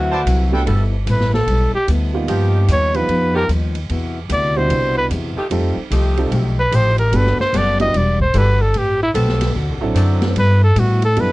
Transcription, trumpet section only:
0.12 0.22 E4 medium
0.12 0.22 C5 medium
0.12 0.21 D5 medium
0.12 0.22 A5 medium
0.52 0.62 E4 medium
0.52 0.62 A4 medium
0.52 0.62 B4 medium
0.52 0.62 G5 medium

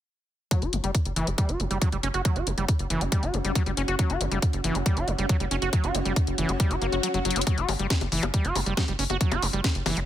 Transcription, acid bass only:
0.51 0.64 F#3 medium
0.62 0.74 F#4 medium
0.73 0.78 E3 medium
0.84 0.91 G3 medium
1.16 1.29 E3 loud
1.27 1.30 A#3 medium
1.38 1.50 G3 medium
1.49 1.61 F#4 medium
1.60 1.65 E3 medium
1.71 1.78 G3 medium
1.82 1.89 F#3 loud
1.92 1.97 G3 medium
2.03 2.08 C#4 loud
2.14 2.22 F#4 medium
2.25 2.37 F#3 medium
2.36 2.48 F#4 medium
2.47 2.52 E3 medium
2.58 2.65 G3 medium
2.90 3.03 E3 loud
3.01 3.04 A#3 medium
3.12 3.24 G3 medium
3.23 3.35 F#4 medium
3.34 3.39 E3 medium
3.45 3.52 G3 medium
3.55 3.63 F#3 loud
3.66 3.71 G3 medium
3.77 3.82 C#4 loud
3.88 3.96 F#4 medium
3.99 4.11 F#3 medium
4.10 4.22 F#4 medium
4.21 4.26 E3 medium
4.32 4.39 G3 medium
4.64 4.76 E3 loud
4.75 4.78 A#3 medium
4.86 4.98 G3 medium
4.97 5.09 F#4 medium
5.08 5.13 E3 medium
5.19 5.26 G3 medium
5.29 5.37 F#3 loud
5.40 5.45 G3 medium
5.51 5.56 C#4 loud
5.62 5.69 F#4 medium
5.73 5.85 F#3 medium
5.84 5.96 F#4 medium
5.95 6.00 E3 medium
6.05 6.13 G3 medium
6.38 6.50 E3 loud
6.49 6.52 A#3 medium
6.60 6.72 G3 medium
6.71 6.76 F#4 medium
6.82 6.87 A#3 medium
6.92 6.95 F#4 medium
7.03 7.08 F#3 medium
7.14 7.19 F#3 loud
7.25 7.37 F#3 loud
7.36 7.41 C#4 loud
7.47 7.59 F#3 medium
7.58 7.70 F#4 medium
7.69 7.73 E3 medium
7.79 7.87 G3 medium
8.12 8.24 E3 loud
8.23 8.26 A#3 medium
8.34 8.46 G3 medium
8.45 8.57 F#4 medium
8.55 8.60 E3 medium
8.66 8.74 G3 medium
8.77 8.85 F#3 loud
8.88 8.93 G3 medium
8.99 9.04 C#4 loud
9.10 9.17 F#4 medium
9.21 9.33 F#3 medium
9.32 9.44 F#4 medium
9.42 9.47 E3 medium
9.53 9.61 G3 medium
9.86 9.98 E3 loud
9.97 10.00 A#3 medium

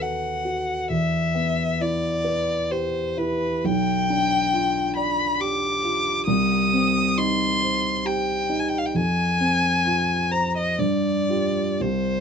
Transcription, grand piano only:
0.00 0.86 D#2 soft
0.00 0.92 B3 soft
0.00 0.45 F#4 soft
0.00 0.72 A4 soft
0.00 0.26 B4 soft
0.45 0.90 F#4 soft
0.90 3.60 E2 soft
1.34 2.06 B3 soft
1.80 2.52 E4 soft
2.24 2.98 B4 soft
2.71 3.46 G4 soft
3.17 3.64 E4 soft
3.65 6.24 B1 soft
4.10 4.79 D4 soft
4.53 5.22 F4 soft
4.96 5.66 D5 soft
5.40 6.10 G4 soft
5.84 6.28 F4 soft
6.27 8.91 C2 soft
6.73 7.44 C4 soft
7.18 7.89 D#4 soft
7.62 8.33 C5 soft
8.05 8.76 G4 soft
8.49 8.94 D#4 soft
8.95 10.75 F2 soft
9.40 10.13 C4 soft
9.85 10.60 F4 soft
10.31 10.79 C5 soft
10.79 11.78 G2 soft
11.29 11.77 F4 soft
11.29 11.77 G4 soft
11.81 12.20 C2 soft

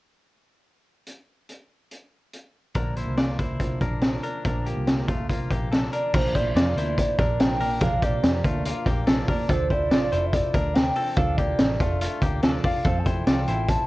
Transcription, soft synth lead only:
5.93 6.16 D5 medium
6.15 6.37 C5 medium
6.35 6.98 D5 medium
6.99 7.42 D5 medium
7.40 7.82 G5 loud
7.83 8.05 F5 loud
8.03 8.66 D5 medium
9.28 9.51 D5 medium
9.50 9.73 C5 medium
9.72 10.26 D5 medium
10.26 10.34 E5 medium
10.33 10.75 D5 medium
10.74 11.16 G5 loud
11.17 11.38 F5 loud
11.37 12.00 D5 medium
12.65 13.00 F5 medium
12.99 13.07 A5 medium
13.06 13.70 G5 loud
13.69 13.87 A5 loud

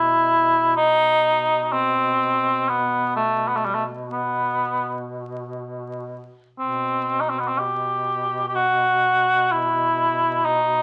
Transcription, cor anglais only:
0.00 0.76 E4 loud
0.77 1.63 D#4 loud
1.63 1.74 D#4 medium
1.72 2.70 C4 medium
2.69 3.15 B3 medium
3.16 3.49 A3 medium
3.48 3.58 B3 medium
3.56 3.67 A3 soft
3.65 3.76 G3 medium
3.75 3.84 A3 medium
4.12 5.07 B3 medium
6.59 7.22 C4 medium
7.21 7.32 D#4 medium
7.30 7.41 C4 medium
7.40 7.49 B3 medium
7.48 7.60 C4 medium
7.59 8.48 G4 medium
8.49 8.57 G4 medium
8.55 9.53 F#4 medium
9.52 10.47 E4 medium
10.45 10.82 D#4 medium

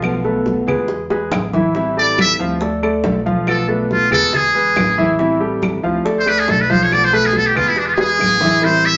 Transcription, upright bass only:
0.00 0.62 B1 loud
0.67 1.28 E2 medium
1.32 2.33 A1 medium
2.40 3.01 D2 medium
3.04 4.06 B1 medium
4.11 4.72 E2 medium
4.76 5.78 A1 loud
5.84 6.44 D2 medium
6.49 7.50 B1 medium
7.56 8.16 E2 medium
8.20 8.97 A1 medium

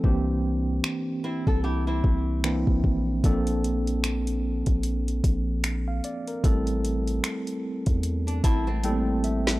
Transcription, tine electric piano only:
0.04 1.36 E3 medium
0.04 1.36 A#3 medium
0.04 1.37 C4 medium
0.04 1.37 D4 medium
0.04 1.37 G4 medium
2.44 3.12 E3 medium
2.44 3.12 A#3 medium
2.44 3.12 C4 medium
2.44 3.12 D4 medium
2.44 3.12 E4 medium
3.24 4.56 F3 medium
3.24 4.57 A#3 medium
3.24 4.57 C4 medium
3.24 4.57 D4 medium
3.24 4.57 A4 medium
5.88 6.03 F5 medium
6.05 6.26 D5 medium
6.28 6.65 A#4 medium
6.44 7.76 G3 medium
6.44 7.76 A3 medium
6.44 7.77 C4 medium
6.44 7.77 E4 medium
6.44 7.77 A4 medium
8.44 8.81 A5 medium
8.84 9.51 G3 medium
8.84 9.52 A3 medium
8.84 8.92 A#3 medium
8.84 9.52 E4 medium
8.84 9.52 A4 medium
8.84 9.21 G5 medium
8.91 9.55 C4 medium
9.24 9.60 E5 medium

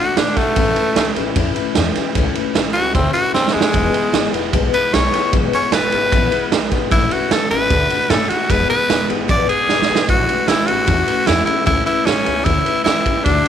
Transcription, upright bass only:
0.18 0.33 A2 medium
0.37 0.53 B2 loud
0.57 0.72 A1 medium
0.77 muted upright bass stroke medium
0.96 1.12 C#2 loud
1.17 1.32 A1 loud
1.36 1.52 E2 loud
1.56 muted upright bass stroke medium
1.77 1.92 E2 loud
1.97 muted upright bass stroke medium
2.15 2.31 C#2 medium
2.36 muted upright bass stroke medium
2.56 2.72 A1 medium
2.77 2.92 C#2 medium
2.95 3.11 D2 loud
3.15 muted upright bass stroke medium
3.35 3.50 E2 medium
3.55 3.71 F#2 loud
3.74 3.90 E1 medium
3.94 muted upright bass stroke medium
4.14 4.30 G#1 medium
4.33 4.49 E1 medium
4.53 4.69 B1 medium
4.94 5.10 B1 medium
5.14 muted upright bass stroke medium
5.33 5.49 G#1 loud
5.53 muted upright bass stroke medium
5.73 5.89 E1 loud
5.93 6.09 G#1 medium
6.13 6.28 A1 medium
6.52 6.68 B1 medium
6.72 6.88 G#1 loud
6.92 7.08 A1 loud
7.11 muted upright bass stroke medium
7.31 7.47 C#2 medium
7.51 7.67 A1 medium
7.71 7.87 D2 loud
7.91 muted upright bass stroke medium
8.10 8.26 A2 medium
8.30 muted upright bass stroke medium
8.50 8.66 E1 medium
8.70 muted upright bass stroke medium
8.90 9.06 E1 loud
9.10 9.26 G#1 medium
9.29 9.45 A1 medium
9.50 muted upright bass stroke medium
9.70 9.86 B1 loud
9.89 10.05 D2 loud
10.09 10.25 A1 medium
10.29 muted upright bass stroke medium
10.50 10.65 C#2 loud
10.69 10.85 A1 medium
10.88 11.04 E2 medium
11.09 muted upright bass stroke medium
11.29 11.44 E2 medium
11.48 muted upright bass stroke medium
11.67 11.83 C#2 medium
11.87 muted upright bass stroke medium
12.07 12.22 A1 loud
12.27 12.42 C#2 medium
12.46 12.62 D2 loud
12.86 13.02 E2 medium
13.06 13.22 F#2 medium
13.26 13.42 D2 medium

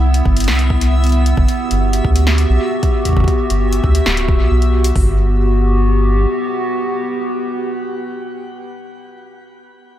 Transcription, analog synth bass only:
0.00 0.22 C2 medium
0.26 0.49 G1 medium
0.48 1.34 C2 medium
1.37 1.46 G1 loud
1.71 2.01 G1 medium
2.05 2.46 D2 loud
2.49 2.58 B1 medium
3.17 3.26 G1 medium
3.50 3.80 G1 medium
3.84 4.02 D2 medium
4.06 4.41 D1 medium
4.40 4.49 B1 medium
4.51 4.92 B1 medium
4.96 6.26 G1 medium

